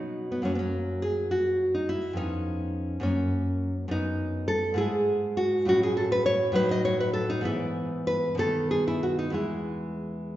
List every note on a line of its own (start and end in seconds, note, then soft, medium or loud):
0.00 0.42 B2 soft
0.00 0.42 F#3 soft
0.00 0.30 B3 soft
0.00 0.29 D#4 medium
0.32 0.45 B3 medium
0.42 2.12 F#2 soft
0.42 2.12 F#3 soft
0.42 2.13 A#3 soft
0.42 0.53 C#4 medium
0.55 0.58 B3 medium
0.55 1.02 C#4 medium
1.02 1.30 G#4 medium
1.31 1.72 F#4 medium
1.75 1.89 D#4 medium
1.89 2.17 E4 medium
2.13 2.99 F2 soft
2.13 3.01 B3 soft
2.13 3.02 C#4 soft
2.13 3.01 D#4 medium
3.00 3.86 F#2 soft
3.00 3.87 A#3 soft
3.00 3.73 C#4 medium
3.88 4.73 F#2 soft
3.88 3.91 A3 soft
3.88 4.76 B3 soft
3.88 4.47 D#4 medium
4.48 4.77 A4 medium
4.74 5.63 G#2 medium
4.74 5.64 G#3 soft
4.74 5.64 E4 soft
4.74 5.35 G#4 medium
5.37 5.66 F#4 medium
5.65 6.51 A2 medium
5.65 6.52 F#3 soft
5.65 6.54 C#4 soft
5.65 5.83 F#4 medium
5.83 5.96 G#4 medium
5.97 6.11 A4 medium
6.12 6.25 B4 medium
6.26 6.55 C#5 loud
6.52 7.41 A2 medium
6.52 7.42 F#3 medium
6.52 7.28 D#4 soft
6.52 6.71 B4 loud
6.71 6.84 D#5 medium
6.85 7.00 C#5 medium
7.00 7.13 B4 medium
7.13 7.30 A4 medium
7.30 7.45 D#4 medium
7.41 8.33 G#2 soft
7.41 8.34 E3 soft
7.41 8.34 B3 soft
7.45 8.04 E4 medium
8.07 8.37 B4 medium
8.35 9.30 B2 medium
8.35 9.32 D#3 soft
8.35 9.33 B3 soft
8.39 8.69 A4 medium
8.71 8.87 G#4 medium
8.88 9.03 E4 medium
9.03 9.18 F#4 medium
9.19 9.34 D#4 medium
9.30 10.37 E2 soft
9.30 10.37 E3 soft
9.30 10.37 G#3 soft
9.34 10.30 E4 medium